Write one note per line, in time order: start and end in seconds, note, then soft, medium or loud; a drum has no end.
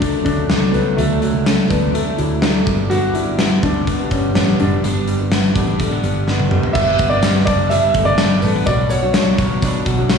0.00 2.55 D3 medium
0.00 0.14 F#3 medium
0.00 0.25 F#3 soft
0.00 0.13 A3 medium
0.00 0.49 A3 medium
0.00 0.12 D4 medium
0.00 0.23 D4 medium
0.00 1.70 D4 soft
0.00 kick medium
0.00 closed hi-hat medium
0.13 0.49 F#3 soft
0.13 0.50 A3 soft
0.13 0.50 D4 medium
0.25 0.46 D2 medium
0.25 0.73 F#3 soft
0.25 0.75 D4 medium
0.25 kick medium
0.25 closed hi-hat medium
0.50 0.71 C#2 medium
0.50 0.72 D3 soft
0.50 0.73 F#3 medium
0.50 1.46 A3 medium
0.50 0.75 A3 medium
0.50 0.76 D4 medium
0.50 snare loud
0.50 closed hi-hat medium
0.71 0.94 C#2 medium
0.71 0.96 D3 medium
0.71 1.22 F#3 medium
0.71 0.97 F#3 medium
0.71 0.95 B3 medium
0.71 closed hi-hat soft
0.76 0.98 A3 medium
0.76 0.99 D4 medium
0.97 1.29 D2 medium
0.97 1.34 D3 medium
0.97 1.35 F#3 medium
0.97 1.19 A3 medium
0.97 1.35 A3 medium
0.97 1.33 D4 medium
0.97 closed hi-hat medium
1.20 2.18 F#3 soft
1.20 1.46 A3 medium
1.20 closed hi-hat medium
1.34 1.65 C#2 medium
1.34 1.70 F#3 soft
1.34 1.71 A3 soft
1.34 1.70 D4 medium
1.45 1.94 A3 medium
1.45 1.50 C#4 medium
1.45 snare loud
1.45 closed hi-hat medium
1.69 2.01 D2 medium
1.69 2.06 D3 medium
1.69 2.07 F#3 medium
1.69 2.06 A3 medium
1.69 1.95 B3 medium
1.69 3.63 D4 medium
1.69 kick medium
1.69 closed hi-hat medium
1.73 2.05 D4 medium
1.94 2.19 A3 medium
1.94 2.42 A3 soft
1.94 closed hi-hat medium
2.06 2.42 F#3 soft
2.06 2.43 A3 soft
2.06 2.42 D4 medium
2.17 2.60 D2 loud
2.17 2.72 F#3 medium
2.17 2.43 E4 medium
2.17 closed hi-hat medium
2.41 2.65 D3 medium
2.41 2.67 F#3 medium
2.41 2.72 A3 medium
2.41 2.68 A3 medium
2.41 2.92 D4 medium
2.41 snare loud
2.41 closed hi-hat medium
2.45 2.68 D4 medium
2.67 3.49 G1 medium
2.67 2.90 G2 medium
2.67 2.90 D3 medium
2.67 2.90 G3 soft
2.67 2.90 B3 medium
2.67 2.91 D4 medium
2.67 kick medium
2.67 closed hi-hat soft
2.90 3.27 G2 medium
2.90 4.82 G2 medium
2.90 3.27 D3 medium
2.90 3.27 G3 medium
2.90 3.26 B3 medium
2.90 3.24 D4 medium
2.90 3.15 F#4 loud
2.90 closed hi-hat medium
3.14 4.11 G3 soft
3.14 3.59 E4 medium
3.14 closed hi-hat medium
3.26 3.63 G3 soft
3.26 3.63 B3 soft
3.26 3.62 D4 medium
3.39 3.87 B3 medium
3.39 snare loud
3.39 closed hi-hat medium
3.63 3.94 D2 medium
3.63 3.99 D3 medium
3.63 3.99 G3 medium
3.63 3.99 B3 medium
3.63 4.12 D4 medium
3.63 5.55 D4 medium
3.63 3.97 D4 medium
3.63 kick medium
3.63 closed hi-hat medium
3.87 4.36 B3 medium
3.87 kick medium
3.87 closed hi-hat medium
3.98 4.34 G3 soft
3.98 4.35 B3 soft
3.98 4.35 D4 soft
4.11 4.32 G1 loud
4.11 4.60 G3 medium
4.11 4.34 C#4 medium
4.11 kick medium
4.11 closed hi-hat medium
4.34 4.56 A1 medium
4.34 4.58 D3 medium
4.34 4.59 G3 medium
4.34 5.31 B3 medium
4.34 4.60 B3 medium
4.34 4.60 C#4 medium
4.34 4.60 D4 medium
4.34 snare medium
4.34 closed hi-hat medium
4.59 4.80 F#1 medium
4.59 4.83 D3 medium
4.59 5.07 G3 medium
4.59 4.83 G3 medium
4.59 4.84 B3 medium
4.59 5.04 D4 medium
4.59 4.84 D4 medium
4.59 closed hi-hat soft
4.83 5.52 G1 medium
4.83 5.19 G2 medium
4.83 6.75 G2 medium
4.83 5.20 D3 medium
4.83 5.20 G3 medium
4.83 5.19 B3 medium
4.83 5.17 D4 medium
4.83 closed hi-hat medium
5.08 6.03 G3 soft
5.08 closed hi-hat medium
5.19 5.54 G3 soft
5.19 5.55 B3 soft
5.19 5.55 D4 medium
5.31 5.79 B3 medium
5.31 snare medium
5.31 closed hi-hat medium
5.54 5.86 A1 medium
5.54 5.91 D3 medium
5.54 5.91 G3 medium
5.54 5.90 B3 medium
5.54 7.47 D4 medium
5.54 5.88 D4 medium
5.54 kick medium
5.54 closed hi-hat medium
5.79 5.91 A3 medium
5.79 kick medium
5.79 closed hi-hat medium
5.90 6.26 G3 soft
5.90 6.26 B3 soft
5.90 6.27 B3 medium
5.90 6.26 D4 medium
6.03 6.44 G1 medium
6.03 6.51 G3 soft
6.03 closed hi-hat medium
6.26 6.48 D3 medium
6.26 6.50 G3 medium
6.26 6.99 B3 medium
6.26 6.51 B3 medium
6.26 6.52 D4 medium
6.26 snare medium
6.39 high tom medium
6.50 6.73 D3 medium
6.50 6.74 G3 medium
6.50 6.80 G3 medium
6.50 6.75 B3 medium
6.50 6.76 D4 medium
6.50 mid tom medium
6.63 floor tom medium
6.73 7.43 G1 medium
6.73 7.10 D3 medium
6.73 7.10 G3 medium
6.73 7.10 B3 medium
6.73 7.11 E5 loud
6.73 kick medium
6.73 crash medium
6.73 tambourine medium
6.77 7.09 D4 medium
6.98 7.95 B3 medium
6.98 kick medium
6.98 closed hi-hat medium
6.98 tambourine soft
7.09 7.36 G2 medium
7.09 7.36 D3 medium
7.09 7.35 G3 medium
7.09 7.34 B3 medium
7.09 7.32 D4 medium
7.09 7.44 D5 medium
7.22 7.70 G3 medium
7.22 snare loud
7.22 closed hi-hat medium
7.22 tambourine medium
7.33 7.70 G3 medium
7.33 7.70 B3 soft
7.33 7.70 D4 medium
7.45 7.77 F#1 medium
7.45 8.19 D4 medium
7.45 7.71 D5 medium
7.45 kick loud
7.45 closed hi-hat medium
7.45 tambourine soft
7.70 8.06 G2 medium
7.70 8.07 D3 medium
7.70 8.07 G3 medium
7.70 8.72 G3 medium
7.70 8.06 B3 medium
7.70 8.04 D4 medium
7.70 8.04 E5 loud
7.70 closed hi-hat medium
7.70 tambourine soft
7.94 8.15 G1 medium
7.94 8.07 A3 medium
7.94 kick medium
7.94 closed hi-hat medium
7.94 tambourine soft
8.05 8.32 G3 soft
8.05 8.30 B3 soft
8.05 8.43 B3 soft
8.05 8.28 D4 medium
8.05 8.43 D5 loud
8.18 8.39 G1 medium
8.18 8.72 D4 medium
8.18 snare loud
8.18 closed hi-hat medium
8.18 tambourine medium
8.30 8.65 G3 soft
8.30 8.64 B3 soft
8.30 8.66 D4 soft
8.41 8.63 A1 medium
8.41 8.56 A3 medium
8.41 8.67 B4 medium
8.41 open hi-hat medium
8.41 tambourine medium
8.56 8.72 B3 soft
8.66 9.38 B1 medium
8.66 10.18 B2 medium
8.66 9.02 B3 medium
8.66 9.02 D4 medium
8.66 9.01 F#4 medium
8.66 9.00 C#5 medium
8.66 8.91 D5 loud
8.66 kick loud
8.66 closed hi-hat medium
8.66 tambourine medium
8.89 9.85 F#4 soft
8.89 9.12 C#5 medium
8.89 closed hi-hat medium
8.89 tambourine soft
9.02 9.27 B2 medium
9.02 9.27 F#3 medium
9.02 9.27 B3 medium
9.02 9.26 D4 medium
9.02 9.25 F#4 medium
9.02 9.24 C#5 medium
9.13 9.62 D4 medium
9.13 10.18 C#5 medium
9.13 snare loud
9.13 closed hi-hat loud
9.13 tambourine medium
9.25 9.61 B3 soft
9.25 9.62 D4 soft
9.25 9.62 F#4 medium
9.25 9.62 C#5 medium
9.38 9.69 A1 medium
9.38 10.09 C#5 medium
9.38 kick medium
9.38 closed hi-hat medium
9.38 tambourine medium
9.62 9.98 B2 medium
9.62 9.98 F#3 medium
9.62 9.98 B3 medium
9.62 9.98 D4 medium
9.62 10.18 D4 medium
9.62 9.97 F#4 medium
9.62 9.95 C#5 medium
9.62 kick medium
9.62 closed hi-hat medium
9.62 tambourine soft
9.86 10.18 B1 loud
9.86 10.18 F#4 medium
9.86 kick medium
9.86 closed hi-hat medium
9.86 tambourine soft
9.97 10.18 B3 medium
9.97 10.18 D4 medium
9.97 10.18 F#4 medium
9.97 10.18 C#5 medium
10.10 10.18 C#5 medium
10.10 snare loud
10.10 closed hi-hat medium
10.10 tambourine medium